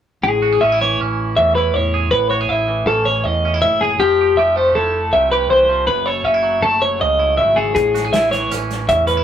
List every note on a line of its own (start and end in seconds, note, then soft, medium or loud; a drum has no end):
0.23 0.58 A1 medium
0.23 1.37 A2 medium
0.23 0.61 G#4 medium
0.42 0.53 F#4 medium
0.53 1.93 G#4 soft
0.61 0.96 A1 medium
0.61 0.72 C#4 medium
0.61 0.80 E5 medium
0.72 1.56 E4 soft
0.81 2.67 E3 medium
0.81 1.00 C#5 medium
0.99 1.34 A1 medium
0.99 2.11 C#4 medium
1.36 1.71 E2 medium
1.36 1.74 A2 medium
1.36 1.55 E5 medium
1.55 2.34 E4 medium
1.55 1.74 B4 medium
1.74 2.09 E2 medium
1.74 2.10 A2 medium
1.74 2.11 C#5 medium
1.94 2.10 G#4 medium
2.11 2.46 A1 medium
2.11 3.24 A2 medium
2.11 2.29 B4 medium
2.30 2.41 F#4 medium
2.30 2.49 C#5 medium
2.41 3.81 G#4 soft
2.49 2.84 A1 loud
2.49 3.45 E4 medium
2.49 2.87 E5 medium
2.68 4.00 E3 medium
2.86 3.21 A1 medium
2.86 3.44 C#4 medium
2.86 3.06 A4 medium
3.05 3.24 C#5 medium
3.24 3.63 E2 medium
3.24 3.61 A2 medium
3.24 3.61 D#5 medium
3.45 3.54 C#4 medium
3.54 4.00 E4 soft
3.62 3.96 F#1 medium
3.62 3.98 A2 medium
3.62 3.81 E5 medium
3.81 4.00 G#4 medium
3.81 3.98 G#4 medium
4.00 4.34 F1 medium
4.00 5.49 F3 medium
4.00 4.37 G4 medium
4.21 4.38 G4 medium
4.37 4.72 F1 medium
4.37 5.31 G4 medium
4.37 4.56 E5 medium
4.56 6.63 A3 medium
4.56 4.75 C5 medium
4.75 5.10 F1 medium
4.75 5.90 E4 medium
4.75 5.13 A4 medium
5.12 5.47 C2 medium
5.12 5.86 C3 medium
5.12 5.31 E5 medium
5.31 5.86 G4 medium
5.31 5.50 B4 medium
5.49 5.85 C2 medium
5.49 5.69 E3 medium
5.49 5.87 C5 medium
5.69 5.88 F3 medium
5.87 6.22 F#1 medium
5.87 7.37 F#2 medium
5.87 6.06 B4 medium
6.06 7.56 A4 medium
6.06 6.25 C#5 medium
6.24 6.60 F#1 medium
6.24 6.34 C#4 medium
6.24 6.63 E5 medium
6.34 7.18 E4 soft
6.43 7.73 F#3 medium
6.62 6.97 F#1 medium
6.62 8.51 A3 medium
6.62 6.82 A4 medium
6.82 7.01 C#5 medium
7.00 7.39 C#2 medium
7.00 7.73 C#3 medium
7.00 7.37 D#5 medium
7.19 7.98 E4 medium
7.37 7.73 G#1 medium
7.37 7.75 F#2 medium
7.37 7.57 E5 medium
7.56 7.74 G#4 medium
7.56 7.94 A4 medium
7.75 8.10 A1 medium
7.75 8.87 A2 medium
7.75 8.13 G#4 medium
7.75 kick loud
7.75 closed hi-hat medium
7.95 8.05 F#4 medium
7.95 snare soft
7.95 closed hi-hat medium
8.05 9.24 G#4 soft
8.12 8.48 A1 medium
8.12 9.06 E4 medium
8.12 8.31 E5 medium
8.12 snare loud
8.12 closed hi-hat medium
8.31 9.24 E3 medium
8.31 8.51 C#5 medium
8.31 snare soft
8.31 closed hi-hat medium
8.51 8.85 A1 medium
8.51 9.06 C#4 medium
8.51 snare soft
8.51 closed hi-hat medium
8.71 snare soft
8.71 closed hi-hat medium
8.88 9.23 E2 medium
8.88 9.24 A2 medium
8.88 9.07 E5 medium
8.88 kick loud
8.88 closed hi-hat medium
9.07 9.17 C#4 medium
9.07 9.24 B4 medium
9.07 closed hi-hat medium
9.17 9.24 E4 soft